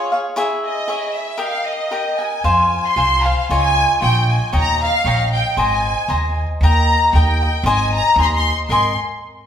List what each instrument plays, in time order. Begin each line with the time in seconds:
Already playing: cavaquinho F4 G#4 C#5 F5, violin section C#5
0.12 cavaquinho G#4 C#5 F5
0.36 cavaquinho E4 G#4 C#5 E5
0.64 violin section D#5
0.88 cavaquinho E4 G#4 C#5 E5
1.13 violin section E5
1.37 cavaquinho G4 A#4 D#5 G5, violin section F5
1.65 violin section D#5
1.91 cavaquinho G4 A#4 D#5 G5
2.17 cavaquinho A#4 D#5 G5, violin section G#5
2.44 upright bass F2, cavaquinho F4 C5 F5 G#5
2.85 violin section C6
2.96 upright bass C2, cavaquinho F4 C5 F5 G#5
3.24 cavaquinho C5 F5 G#5, violin section F5
3.49 upright bass C#2, cavaquinho F4 C#5 D#5 G#5, violin section G#5
4.01 upright bass A#1, cavaquinho F4 C#5 D#5 G#5, violin section G5
4.29 violin section G#5
4.52 upright bass D#2, cavaquinho C#5 D#5 G5 A#5, violin section A#5
4.83 violin section F5
5.04 upright bass A#1, cavaquinho C#5 D#5 G5 A#5
5.33 violin section G5
5.57 upright bass G#1, cavaquinho C5 D#5 G#5 A#5, violin section G#5
6.08 upright bass D#2, cavaquinho C5 D#5 G#5 A#5
6.61 upright bass D#2, cavaquinho A#4 D#5 G5 A#5, violin section A#5
7.13 upright bass D#2, cavaquinho A#4 D#5 G5 A#5, violin section G5
7.42 cavaquinho D#5 G5 A#5
7.63 upright bass G#1, cavaquinho C5 D#5 G#5 A#5
7.68 violin section G#5
7.96 violin section A#5
8.16 upright bass D#2, cavaquinho C5 D#5 G#5
8.20 cavaquinho A#5, violin section C6
8.25 violin section A#5
8.35 violin section C6
8.69 upright bass G#1, cavaquinho A#4 D#5 G#5 C6, violin section C6